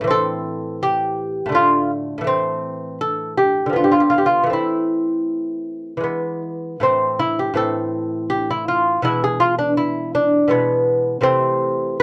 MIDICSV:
0, 0, Header, 1, 2, 480
1, 0, Start_track
1, 0, Key_signature, 0, "minor"
1, 0, Tempo, 725514
1, 73, Time_signature, 3, 2, 24, 8
1, 1994, Tempo, 762389
1, 4394, Tempo, 738007
1, 7777, End_track
2, 0, Start_track
2, 0, Title_t, "Lute"
2, 0, Program_c, 0, 24
2, 6, Note_on_c, 0, 45, 49
2, 26, Note_on_c, 0, 52, 45
2, 49, Note_on_c, 0, 60, 42
2, 70, Note_on_c, 0, 69, 76
2, 530, Note_off_c, 0, 69, 0
2, 547, Note_on_c, 0, 67, 67
2, 956, Note_off_c, 0, 45, 0
2, 964, Note_on_c, 0, 45, 48
2, 980, Note_off_c, 0, 52, 0
2, 986, Note_on_c, 0, 50, 39
2, 992, Note_off_c, 0, 60, 0
2, 1006, Note_on_c, 0, 57, 37
2, 1009, Note_off_c, 0, 67, 0
2, 1024, Note_on_c, 0, 65, 62
2, 1256, Note_off_c, 0, 65, 0
2, 1434, Note_off_c, 0, 45, 0
2, 1442, Note_on_c, 0, 45, 45
2, 1459, Note_off_c, 0, 50, 0
2, 1462, Note_on_c, 0, 52, 41
2, 1475, Note_off_c, 0, 57, 0
2, 1483, Note_on_c, 0, 57, 40
2, 1502, Note_on_c, 0, 60, 67
2, 1971, Note_off_c, 0, 60, 0
2, 1991, Note_on_c, 0, 69, 69
2, 2218, Note_off_c, 0, 69, 0
2, 2221, Note_on_c, 0, 67, 60
2, 2399, Note_off_c, 0, 52, 0
2, 2401, Note_on_c, 0, 50, 42
2, 2409, Note_off_c, 0, 45, 0
2, 2420, Note_off_c, 0, 57, 0
2, 2423, Note_on_c, 0, 53, 34
2, 2444, Note_on_c, 0, 59, 36
2, 2452, Note_off_c, 0, 67, 0
2, 2464, Note_on_c, 0, 65, 47
2, 2514, Note_on_c, 0, 67, 46
2, 2516, Note_off_c, 0, 65, 0
2, 2562, Note_on_c, 0, 65, 49
2, 2567, Note_off_c, 0, 67, 0
2, 2616, Note_on_c, 0, 67, 49
2, 2617, Note_off_c, 0, 65, 0
2, 2670, Note_off_c, 0, 67, 0
2, 2677, Note_on_c, 0, 65, 51
2, 2727, Note_off_c, 0, 65, 0
2, 2727, Note_on_c, 0, 67, 45
2, 2778, Note_on_c, 0, 65, 56
2, 2779, Note_off_c, 0, 67, 0
2, 2886, Note_off_c, 0, 50, 0
2, 2889, Note_on_c, 0, 52, 45
2, 2905, Note_off_c, 0, 53, 0
2, 2907, Note_on_c, 0, 57, 33
2, 2921, Note_off_c, 0, 59, 0
2, 2929, Note_on_c, 0, 60, 31
2, 2940, Note_off_c, 0, 65, 0
2, 2950, Note_on_c, 0, 64, 54
2, 3848, Note_off_c, 0, 52, 0
2, 3856, Note_on_c, 0, 52, 35
2, 3872, Note_off_c, 0, 57, 0
2, 3878, Note_on_c, 0, 56, 29
2, 3883, Note_off_c, 0, 60, 0
2, 3897, Note_on_c, 0, 59, 34
2, 4135, Note_off_c, 0, 64, 0
2, 4349, Note_off_c, 0, 52, 0
2, 4360, Note_off_c, 0, 56, 0
2, 4370, Note_off_c, 0, 59, 0
2, 4378, Note_on_c, 0, 45, 43
2, 4385, Note_on_c, 0, 52, 38
2, 4396, Note_on_c, 0, 60, 61
2, 4627, Note_off_c, 0, 60, 0
2, 4634, Note_on_c, 0, 64, 59
2, 4756, Note_off_c, 0, 64, 0
2, 4763, Note_on_c, 0, 67, 60
2, 4849, Note_off_c, 0, 45, 0
2, 4856, Note_on_c, 0, 45, 44
2, 4858, Note_off_c, 0, 52, 0
2, 4864, Note_on_c, 0, 52, 35
2, 4869, Note_on_c, 0, 60, 39
2, 4875, Note_off_c, 0, 67, 0
2, 4877, Note_on_c, 0, 69, 63
2, 5337, Note_off_c, 0, 69, 0
2, 5351, Note_on_c, 0, 67, 70
2, 5474, Note_off_c, 0, 67, 0
2, 5487, Note_on_c, 0, 64, 57
2, 5599, Note_off_c, 0, 64, 0
2, 5602, Note_on_c, 0, 65, 55
2, 5798, Note_off_c, 0, 45, 0
2, 5802, Note_off_c, 0, 52, 0
2, 5804, Note_off_c, 0, 60, 0
2, 5823, Note_on_c, 0, 47, 50
2, 5828, Note_off_c, 0, 65, 0
2, 5829, Note_on_c, 0, 52, 37
2, 5835, Note_on_c, 0, 56, 35
2, 5839, Note_on_c, 0, 64, 65
2, 5955, Note_off_c, 0, 64, 0
2, 5962, Note_on_c, 0, 68, 59
2, 6068, Note_on_c, 0, 65, 66
2, 6076, Note_off_c, 0, 68, 0
2, 6186, Note_off_c, 0, 65, 0
2, 6189, Note_on_c, 0, 62, 55
2, 6308, Note_off_c, 0, 62, 0
2, 6311, Note_on_c, 0, 64, 62
2, 6539, Note_off_c, 0, 64, 0
2, 6555, Note_on_c, 0, 62, 61
2, 6754, Note_off_c, 0, 47, 0
2, 6757, Note_off_c, 0, 52, 0
2, 6760, Note_off_c, 0, 56, 0
2, 6769, Note_on_c, 0, 47, 43
2, 6777, Note_on_c, 0, 52, 37
2, 6780, Note_off_c, 0, 62, 0
2, 6782, Note_on_c, 0, 56, 36
2, 6788, Note_on_c, 0, 59, 54
2, 7238, Note_off_c, 0, 47, 0
2, 7242, Note_off_c, 0, 52, 0
2, 7243, Note_off_c, 0, 59, 0
2, 7244, Note_on_c, 0, 48, 48
2, 7245, Note_off_c, 0, 56, 0
2, 7249, Note_on_c, 0, 52, 39
2, 7255, Note_on_c, 0, 57, 41
2, 7261, Note_on_c, 0, 60, 72
2, 7736, Note_off_c, 0, 60, 0
2, 7777, Note_off_c, 0, 48, 0
2, 7777, Note_off_c, 0, 52, 0
2, 7777, Note_off_c, 0, 57, 0
2, 7777, End_track
0, 0, End_of_file